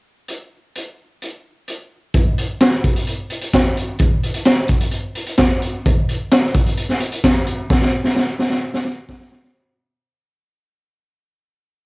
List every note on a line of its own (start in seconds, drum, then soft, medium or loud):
0.28 closed hi-hat medium
0.75 closed hi-hat medium
1.22 closed hi-hat medium
1.68 closed hi-hat medium
2.14 kick loud
2.14 closed hi-hat medium
2.38 closed hi-hat medium
2.60 snare loud
2.60 closed hi-hat medium
2.84 kick medium
2.84 closed hi-hat medium
2.96 closed hi-hat medium
3.07 closed hi-hat medium
3.30 closed hi-hat medium
3.41 closed hi-hat medium
3.53 kick medium
3.53 snare medium
3.53 closed hi-hat medium
3.77 closed hi-hat medium
3.99 kick loud
3.99 closed hi-hat medium
4.23 closed hi-hat medium
4.34 closed hi-hat medium
4.45 snare loud
4.45 closed hi-hat medium
4.68 kick medium
4.68 closed hi-hat medium
4.81 closed hi-hat medium
4.91 closed hi-hat medium
5.15 closed hi-hat medium
5.27 closed hi-hat medium
5.38 kick medium
5.38 snare loud
5.38 closed hi-hat medium
5.62 closed hi-hat medium
5.86 kick loud
5.86 closed hi-hat medium
6.09 closed hi-hat medium
6.31 snare loud
6.31 closed hi-hat medium
6.54 kick medium
6.54 closed hi-hat medium
6.66 closed hi-hat medium
6.77 closed hi-hat medium
6.89 snare soft
7.00 closed hi-hat medium
7.12 closed hi-hat medium
7.24 kick medium
7.24 snare loud
7.24 closed hi-hat medium
7.47 closed hi-hat medium
7.70 kick loud
7.70 snare medium
7.81 snare soft
8.04 snare medium
8.16 snare medium
8.39 snare medium
8.50 snare medium
8.74 snare medium
8.85 snare medium
9.09 kick medium
9.09 snare medium
9.20 snare medium
9.32 snare medium
9.44 snare medium